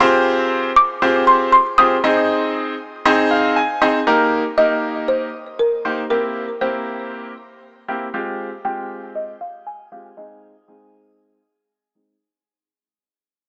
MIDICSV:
0, 0, Header, 1, 3, 480
1, 0, Start_track
1, 0, Tempo, 508475
1, 3, Time_signature, 4, 2, 24, 8
1, 12730, End_track
2, 0, Start_track
2, 0, Title_t, "Marimba"
2, 0, Program_c, 0, 12
2, 721, Note_on_c, 0, 86, 102
2, 1168, Note_off_c, 0, 86, 0
2, 1201, Note_on_c, 0, 84, 92
2, 1428, Note_off_c, 0, 84, 0
2, 1439, Note_on_c, 0, 84, 98
2, 1664, Note_off_c, 0, 84, 0
2, 1680, Note_on_c, 0, 87, 105
2, 2604, Note_off_c, 0, 87, 0
2, 4321, Note_on_c, 0, 75, 104
2, 4768, Note_off_c, 0, 75, 0
2, 4799, Note_on_c, 0, 72, 96
2, 5281, Note_on_c, 0, 70, 89
2, 5295, Note_off_c, 0, 72, 0
2, 5750, Note_off_c, 0, 70, 0
2, 5761, Note_on_c, 0, 70, 92
2, 6208, Note_off_c, 0, 70, 0
2, 6243, Note_on_c, 0, 72, 78
2, 6925, Note_off_c, 0, 72, 0
2, 8165, Note_on_c, 0, 79, 93
2, 8642, Note_on_c, 0, 75, 84
2, 8658, Note_off_c, 0, 79, 0
2, 8883, Note_on_c, 0, 77, 89
2, 8890, Note_off_c, 0, 75, 0
2, 9125, Note_on_c, 0, 80, 97
2, 9130, Note_off_c, 0, 77, 0
2, 9364, Note_on_c, 0, 77, 89
2, 9371, Note_off_c, 0, 80, 0
2, 9602, Note_on_c, 0, 75, 83
2, 9611, Note_off_c, 0, 77, 0
2, 11005, Note_off_c, 0, 75, 0
2, 12730, End_track
3, 0, Start_track
3, 0, Title_t, "Grand piano"
3, 0, Program_c, 1, 0
3, 4, Note_on_c, 1, 60, 97
3, 4, Note_on_c, 1, 65, 87
3, 4, Note_on_c, 1, 67, 88
3, 4, Note_on_c, 1, 68, 86
3, 4, Note_on_c, 1, 72, 104
3, 650, Note_off_c, 1, 60, 0
3, 650, Note_off_c, 1, 65, 0
3, 650, Note_off_c, 1, 67, 0
3, 650, Note_off_c, 1, 68, 0
3, 650, Note_off_c, 1, 72, 0
3, 962, Note_on_c, 1, 60, 82
3, 963, Note_on_c, 1, 65, 72
3, 963, Note_on_c, 1, 67, 75
3, 963, Note_on_c, 1, 68, 74
3, 963, Note_on_c, 1, 72, 89
3, 1448, Note_off_c, 1, 60, 0
3, 1448, Note_off_c, 1, 65, 0
3, 1448, Note_off_c, 1, 67, 0
3, 1448, Note_off_c, 1, 68, 0
3, 1448, Note_off_c, 1, 72, 0
3, 1683, Note_on_c, 1, 60, 70
3, 1683, Note_on_c, 1, 65, 66
3, 1683, Note_on_c, 1, 67, 65
3, 1683, Note_on_c, 1, 68, 66
3, 1683, Note_on_c, 1, 72, 76
3, 1844, Note_off_c, 1, 72, 0
3, 1845, Note_off_c, 1, 60, 0
3, 1845, Note_off_c, 1, 65, 0
3, 1845, Note_off_c, 1, 67, 0
3, 1845, Note_off_c, 1, 68, 0
3, 1923, Note_on_c, 1, 60, 80
3, 1923, Note_on_c, 1, 63, 72
3, 1923, Note_on_c, 1, 68, 74
3, 1923, Note_on_c, 1, 72, 74
3, 1923, Note_on_c, 1, 75, 87
3, 2570, Note_off_c, 1, 60, 0
3, 2570, Note_off_c, 1, 63, 0
3, 2570, Note_off_c, 1, 68, 0
3, 2570, Note_off_c, 1, 72, 0
3, 2570, Note_off_c, 1, 75, 0
3, 2883, Note_on_c, 1, 63, 87
3, 2884, Note_on_c, 1, 60, 96
3, 2884, Note_on_c, 1, 68, 88
3, 2884, Note_on_c, 1, 72, 86
3, 2884, Note_on_c, 1, 75, 107
3, 3123, Note_on_c, 1, 77, 75
3, 3346, Note_off_c, 1, 77, 0
3, 3363, Note_on_c, 1, 80, 80
3, 3368, Note_off_c, 1, 60, 0
3, 3368, Note_off_c, 1, 63, 0
3, 3368, Note_off_c, 1, 68, 0
3, 3368, Note_off_c, 1, 72, 0
3, 3368, Note_off_c, 1, 75, 0
3, 3602, Note_on_c, 1, 60, 84
3, 3602, Note_on_c, 1, 63, 77
3, 3602, Note_on_c, 1, 68, 77
3, 3602, Note_on_c, 1, 72, 79
3, 3603, Note_on_c, 1, 75, 90
3, 3764, Note_off_c, 1, 60, 0
3, 3764, Note_off_c, 1, 63, 0
3, 3764, Note_off_c, 1, 68, 0
3, 3764, Note_off_c, 1, 72, 0
3, 3764, Note_off_c, 1, 75, 0
3, 3810, Note_off_c, 1, 80, 0
3, 3841, Note_on_c, 1, 63, 80
3, 3841, Note_on_c, 1, 67, 79
3, 3842, Note_on_c, 1, 58, 87
3, 3842, Note_on_c, 1, 70, 97
3, 4165, Note_off_c, 1, 63, 0
3, 4165, Note_off_c, 1, 67, 0
3, 4166, Note_off_c, 1, 58, 0
3, 4166, Note_off_c, 1, 70, 0
3, 4321, Note_on_c, 1, 58, 74
3, 4321, Note_on_c, 1, 63, 70
3, 4321, Note_on_c, 1, 67, 67
3, 4321, Note_on_c, 1, 70, 83
3, 4968, Note_off_c, 1, 67, 0
3, 4969, Note_off_c, 1, 58, 0
3, 4969, Note_off_c, 1, 63, 0
3, 4969, Note_off_c, 1, 70, 0
3, 5522, Note_on_c, 1, 58, 68
3, 5522, Note_on_c, 1, 63, 62
3, 5523, Note_on_c, 1, 72, 71
3, 5524, Note_on_c, 1, 67, 61
3, 5684, Note_off_c, 1, 58, 0
3, 5684, Note_off_c, 1, 63, 0
3, 5684, Note_off_c, 1, 72, 0
3, 5685, Note_off_c, 1, 67, 0
3, 5762, Note_on_c, 1, 58, 73
3, 5762, Note_on_c, 1, 60, 69
3, 5762, Note_on_c, 1, 64, 68
3, 5762, Note_on_c, 1, 67, 81
3, 6086, Note_off_c, 1, 58, 0
3, 6086, Note_off_c, 1, 60, 0
3, 6086, Note_off_c, 1, 64, 0
3, 6086, Note_off_c, 1, 67, 0
3, 6241, Note_on_c, 1, 67, 85
3, 6242, Note_on_c, 1, 58, 76
3, 6242, Note_on_c, 1, 60, 69
3, 6242, Note_on_c, 1, 64, 69
3, 6889, Note_off_c, 1, 58, 0
3, 6889, Note_off_c, 1, 60, 0
3, 6889, Note_off_c, 1, 64, 0
3, 6889, Note_off_c, 1, 67, 0
3, 7442, Note_on_c, 1, 60, 73
3, 7442, Note_on_c, 1, 64, 72
3, 7442, Note_on_c, 1, 67, 86
3, 7443, Note_on_c, 1, 58, 77
3, 7604, Note_off_c, 1, 58, 0
3, 7604, Note_off_c, 1, 60, 0
3, 7604, Note_off_c, 1, 64, 0
3, 7604, Note_off_c, 1, 67, 0
3, 7682, Note_on_c, 1, 56, 88
3, 7682, Note_on_c, 1, 65, 82
3, 7683, Note_on_c, 1, 60, 82
3, 7683, Note_on_c, 1, 67, 96
3, 8006, Note_off_c, 1, 56, 0
3, 8006, Note_off_c, 1, 60, 0
3, 8006, Note_off_c, 1, 65, 0
3, 8006, Note_off_c, 1, 67, 0
3, 8162, Note_on_c, 1, 56, 74
3, 8162, Note_on_c, 1, 65, 70
3, 8163, Note_on_c, 1, 60, 69
3, 8163, Note_on_c, 1, 67, 82
3, 8809, Note_off_c, 1, 56, 0
3, 8809, Note_off_c, 1, 60, 0
3, 8809, Note_off_c, 1, 65, 0
3, 8809, Note_off_c, 1, 67, 0
3, 9363, Note_on_c, 1, 56, 64
3, 9363, Note_on_c, 1, 60, 58
3, 9363, Note_on_c, 1, 65, 58
3, 9363, Note_on_c, 1, 67, 72
3, 9525, Note_off_c, 1, 56, 0
3, 9525, Note_off_c, 1, 60, 0
3, 9525, Note_off_c, 1, 65, 0
3, 9525, Note_off_c, 1, 67, 0
3, 9601, Note_on_c, 1, 68, 82
3, 9602, Note_on_c, 1, 56, 72
3, 9602, Note_on_c, 1, 60, 65
3, 9602, Note_on_c, 1, 63, 66
3, 9925, Note_off_c, 1, 56, 0
3, 9925, Note_off_c, 1, 68, 0
3, 9926, Note_off_c, 1, 60, 0
3, 9926, Note_off_c, 1, 63, 0
3, 10082, Note_on_c, 1, 68, 81
3, 10083, Note_on_c, 1, 56, 71
3, 10083, Note_on_c, 1, 60, 68
3, 10083, Note_on_c, 1, 63, 66
3, 10729, Note_off_c, 1, 56, 0
3, 10729, Note_off_c, 1, 60, 0
3, 10729, Note_off_c, 1, 63, 0
3, 10729, Note_off_c, 1, 68, 0
3, 11282, Note_on_c, 1, 56, 74
3, 11282, Note_on_c, 1, 60, 68
3, 11282, Note_on_c, 1, 63, 65
3, 11282, Note_on_c, 1, 68, 81
3, 11444, Note_off_c, 1, 56, 0
3, 11444, Note_off_c, 1, 60, 0
3, 11444, Note_off_c, 1, 63, 0
3, 11444, Note_off_c, 1, 68, 0
3, 12730, End_track
0, 0, End_of_file